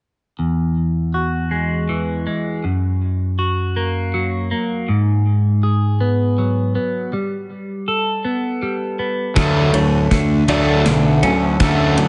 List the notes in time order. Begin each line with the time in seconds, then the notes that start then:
0.39 E2
1.14 F#4
1.51 G#3
1.89 E3
2.27 G#3
2.64 F#2
3.39 F#4
3.76 A#3
4.14 F#3
4.51 A#3
4.88 G#2
5.63 G#4
6.00 B3
6.38 F#3
6.75 B3
7.13 G3
7.88 A4
8.25 B3
8.62 G3
8.99 B3
9.36 D2 D3 F#3 A3 A4 E5 F#5, kick, snare, ride
9.73 D2 D3 F#3 A3 C#5, ride
10.11 D2 D3, kick, snare, ride
10.48 D2 D3 F#3 A3 D5, ride
10.85 B1 D3 F#3, snare, ride
11.23 D2 D3 F#3 C#4, ride
11.60 D2 D3 F#3 A3, kick, snare, ride
11.97 D3 F#3 A3, ride